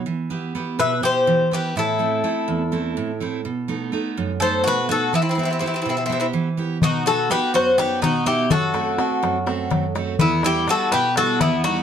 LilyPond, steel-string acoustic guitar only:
\new Staff \with { instrumentName = "Steel-string acoustic guitar" } { \time 7/8 \key e \minor \tempo 4 = 124 e8 <b e' g'>8 <b e' g'>8 b,8 <b, e' g'>8 e8 <b e' g'>8 | a,8 <a c' e'>8 <a c' e'>8 e,8 <a c' e'>8 a,8 <a c' e'>8 | b,8 <a b dis'>8 <a b dis'>8 fis,8 <a b dis'>8 b,8 <a b dis'>8 | e8 <b e' g'>8 <b e' g'>8 b,8 <b e' g'>8 e8 <b e' g'>8 |
b,8 <b dis' fis'>8 <b dis' fis'>8 fis,8 <b dis' fis'>8 b,8 <b dis' fis'>8 | fis,8 <a c' fis'>8 <a c' fis'>8 fis,8 <a c' fis'>8 fis,8 <a c' fis'>8 | e,8 <g b e'>8 <g b e'>8 b,8 <g b e'>8 e,8 <g b e'>8 | }